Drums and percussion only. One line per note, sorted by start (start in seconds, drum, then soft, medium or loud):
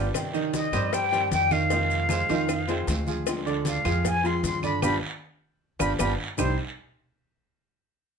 0.14 cowbell loud
0.14 high conga soft
0.14 long guiro medium
0.14 claves medium
0.14 maracas medium
0.34 high conga soft
0.34 maracas soft
0.53 cowbell medium
0.53 high conga medium
0.53 short guiro medium
0.53 maracas medium
0.73 cowbell medium
0.73 high conga soft
0.73 low conga medium
0.73 short guiro medium
0.73 claves medium
0.73 maracas soft
0.93 cowbell loud
0.93 high conga soft
0.93 long guiro medium
0.93 maracas medium
1.12 high conga soft
1.12 maracas soft
1.32 cowbell medium
1.32 high conga medium
1.32 short guiro medium
1.32 maracas medium
1.51 high conga medium
1.51 short guiro medium
1.51 claves medium
1.51 maracas soft
1.70 cowbell loud
1.70 high conga soft
1.70 long guiro medium
1.70 maracas medium
1.90 high conga soft
1.90 maracas soft
2.09 cowbell medium
2.09 high conga loud
2.09 short guiro medium
2.09 claves medium
2.09 maracas medium
2.29 short guiro medium
2.29 maracas soft
2.48 cowbell loud
2.48 high conga soft
2.48 long guiro medium
2.48 claves medium
2.48 maracas medium
2.68 cowbell medium
2.68 high conga soft
2.68 maracas soft
2.88 cowbell medium
2.88 high conga medium
2.88 short guiro medium
2.88 maracas medium
3.07 high conga medium
3.07 short guiro medium
3.07 maracas soft
3.27 cowbell loud
3.27 long guiro medium
3.27 claves medium
3.27 maracas medium
3.45 high conga soft
3.45 maracas soft
3.65 cowbell medium
3.65 high conga medium
3.65 short guiro medium
3.65 maracas medium
3.85 cowbell medium
3.85 high conga soft
3.85 low conga medium
3.85 short guiro medium
3.85 claves medium
3.85 maracas soft
4.04 cowbell loud
4.04 high conga soft
4.04 low conga medium
4.04 long guiro medium
4.04 maracas medium
4.24 high conga soft
4.24 maracas soft
4.43 cowbell medium
4.43 high conga medium
4.43 short guiro medium
4.43 maracas medium
4.63 high conga medium
4.63 short guiro medium
4.63 claves medium
4.63 maracas soft
4.82 cowbell medium
4.82 high conga loud
4.82 long guiro loud
4.82 claves medium
4.82 maracas medium
5.80 cowbell medium
5.80 high conga loud
5.80 long guiro medium
5.80 claves loud
5.80 maracas loud
5.99 cowbell loud
5.99 high conga loud
5.99 long guiro loud
5.99 claves medium
5.99 maracas medium
6.38 low bongo medium
6.38 low conga loud
6.38 long guiro loud
6.38 claves medium
6.38 maracas loud